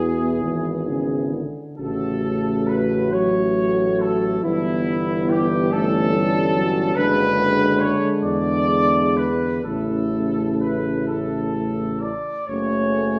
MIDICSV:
0, 0, Header, 1, 6, 480
1, 0, Start_track
1, 0, Key_signature, 3, "major"
1, 0, Tempo, 898204
1, 961, Time_signature, 6, 3, 24, 8
1, 1911, Tempo, 860832
1, 2871, Tempo, 834492
1, 4311, Tempo, 887574
1, 4791, Tempo, 961538
1, 5751, Tempo, 927357
1, 7086, End_track
2, 0, Start_track
2, 0, Title_t, "Trumpet section"
2, 0, Program_c, 0, 61
2, 0, Note_on_c, 0, 68, 56
2, 693, Note_off_c, 0, 68, 0
2, 946, Note_on_c, 0, 69, 55
2, 1408, Note_off_c, 0, 69, 0
2, 1425, Note_on_c, 0, 71, 51
2, 1663, Note_on_c, 0, 73, 61
2, 1670, Note_off_c, 0, 71, 0
2, 2146, Note_off_c, 0, 73, 0
2, 2148, Note_on_c, 0, 69, 55
2, 2386, Note_on_c, 0, 64, 65
2, 2389, Note_off_c, 0, 69, 0
2, 2859, Note_off_c, 0, 64, 0
2, 2866, Note_on_c, 0, 67, 63
2, 3111, Note_on_c, 0, 69, 80
2, 3113, Note_off_c, 0, 67, 0
2, 3824, Note_on_c, 0, 71, 89
2, 3825, Note_off_c, 0, 69, 0
2, 4305, Note_on_c, 0, 73, 63
2, 4309, Note_off_c, 0, 71, 0
2, 4469, Note_off_c, 0, 73, 0
2, 4541, Note_on_c, 0, 74, 75
2, 5014, Note_off_c, 0, 74, 0
2, 5024, Note_on_c, 0, 71, 54
2, 5263, Note_on_c, 0, 69, 51
2, 5268, Note_off_c, 0, 71, 0
2, 5738, Note_off_c, 0, 69, 0
2, 5745, Note_on_c, 0, 71, 42
2, 5974, Note_off_c, 0, 71, 0
2, 5988, Note_on_c, 0, 69, 38
2, 6473, Note_on_c, 0, 74, 43
2, 6480, Note_off_c, 0, 69, 0
2, 6705, Note_on_c, 0, 73, 57
2, 6718, Note_off_c, 0, 74, 0
2, 7086, Note_off_c, 0, 73, 0
2, 7086, End_track
3, 0, Start_track
3, 0, Title_t, "French horn section"
3, 0, Program_c, 1, 60
3, 0, Note_on_c, 1, 64, 38
3, 763, Note_off_c, 1, 64, 0
3, 958, Note_on_c, 1, 66, 40
3, 2367, Note_off_c, 1, 66, 0
3, 2393, Note_on_c, 1, 64, 47
3, 3116, Note_off_c, 1, 64, 0
3, 3117, Note_on_c, 1, 61, 51
3, 3814, Note_off_c, 1, 61, 0
3, 3828, Note_on_c, 1, 62, 55
3, 5190, Note_off_c, 1, 62, 0
3, 5275, Note_on_c, 1, 64, 38
3, 6531, Note_off_c, 1, 64, 0
3, 6728, Note_on_c, 1, 61, 46
3, 7086, Note_off_c, 1, 61, 0
3, 7086, End_track
4, 0, Start_track
4, 0, Title_t, "Euphonium"
4, 0, Program_c, 2, 58
4, 0, Note_on_c, 2, 59, 39
4, 763, Note_off_c, 2, 59, 0
4, 956, Note_on_c, 2, 57, 40
4, 1652, Note_off_c, 2, 57, 0
4, 1674, Note_on_c, 2, 57, 42
4, 2376, Note_off_c, 2, 57, 0
4, 2390, Note_on_c, 2, 59, 48
4, 3120, Note_on_c, 2, 57, 50
4, 3129, Note_off_c, 2, 59, 0
4, 3357, Note_on_c, 2, 55, 55
4, 3365, Note_off_c, 2, 57, 0
4, 3593, Note_on_c, 2, 54, 58
4, 3602, Note_off_c, 2, 55, 0
4, 3829, Note_off_c, 2, 54, 0
4, 3834, Note_on_c, 2, 56, 56
4, 5095, Note_off_c, 2, 56, 0
4, 5267, Note_on_c, 2, 57, 37
4, 6527, Note_off_c, 2, 57, 0
4, 6728, Note_on_c, 2, 57, 49
4, 7086, Note_off_c, 2, 57, 0
4, 7086, End_track
5, 0, Start_track
5, 0, Title_t, "Euphonium"
5, 0, Program_c, 3, 58
5, 0, Note_on_c, 3, 47, 35
5, 171, Note_off_c, 3, 47, 0
5, 232, Note_on_c, 3, 52, 43
5, 471, Note_on_c, 3, 49, 38
5, 479, Note_off_c, 3, 52, 0
5, 710, Note_on_c, 3, 50, 30
5, 718, Note_off_c, 3, 49, 0
5, 951, Note_off_c, 3, 50, 0
5, 954, Note_on_c, 3, 49, 36
5, 1666, Note_on_c, 3, 54, 40
5, 1674, Note_off_c, 3, 49, 0
5, 2383, Note_on_c, 3, 52, 42
5, 2391, Note_off_c, 3, 54, 0
5, 3111, Note_off_c, 3, 52, 0
5, 3115, Note_on_c, 3, 52, 51
5, 3813, Note_off_c, 3, 52, 0
5, 3828, Note_on_c, 3, 50, 51
5, 5092, Note_off_c, 3, 50, 0
5, 5264, Note_on_c, 3, 49, 32
5, 6525, Note_off_c, 3, 49, 0
5, 6723, Note_on_c, 3, 57, 49
5, 7086, Note_off_c, 3, 57, 0
5, 7086, End_track
6, 0, Start_track
6, 0, Title_t, "Tuba"
6, 0, Program_c, 4, 58
6, 0, Note_on_c, 4, 40, 41
6, 228, Note_on_c, 4, 32, 35
6, 236, Note_off_c, 4, 40, 0
6, 781, Note_off_c, 4, 32, 0
6, 956, Note_on_c, 4, 33, 41
6, 2388, Note_on_c, 4, 31, 50
6, 2397, Note_off_c, 4, 33, 0
6, 3824, Note_off_c, 4, 31, 0
6, 3828, Note_on_c, 4, 30, 56
6, 4383, Note_off_c, 4, 30, 0
6, 4548, Note_on_c, 4, 40, 52
6, 5249, Note_off_c, 4, 40, 0
6, 5265, Note_on_c, 4, 33, 37
6, 6526, Note_off_c, 4, 33, 0
6, 6722, Note_on_c, 4, 30, 46
6, 7086, Note_off_c, 4, 30, 0
6, 7086, End_track
0, 0, End_of_file